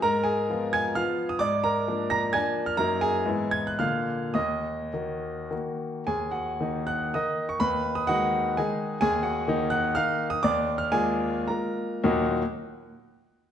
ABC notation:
X:1
M:3/4
L:1/16
Q:1/4=122
K:Ebm
V:1 name="Grand piano"
[Bb]2 [Aa]4 [aa']2 [ff']3 e' | [=d=d']2 [Bb]4 [bb']2 [aa']3 f' | [Bb]2 [Aa]4 ^g' _g' [ff']4 | [ee']8 z4 |
[Aa]2 [Gg]4 [gg']2 [ee']3 d' | [cc']3 e' [Gg]4 [Aa]4 | [Aa]2 [Gg]4 [gg']2 [ff']3 e' | [=d=d']3 f' [Aa]4 [Bb]4 |
[E,,B,,G,B,EGe']2 z8 z2 |]
V:2 name="Grand piano"
A,,4 [F,CF]4 [F,CF]4 | A,,4 [F,B,=D]4 [F,B,D]4 | [G,,G,B,E]4 [^G,,=E,=B,=E]4 [_B,,=D,_B,F]4 | E,,4 [E,B,G]4 [E,B,G]4 |
E,,4 [E,B,E]4 [E,B,E]4 | E,,4 [E,A,E]4 [E,A,E]4 | E,,4 [E,B,E]4 [E,B,E]4 | E,,4 [A,B,F]4 [A,B,F]4 |
z12 |]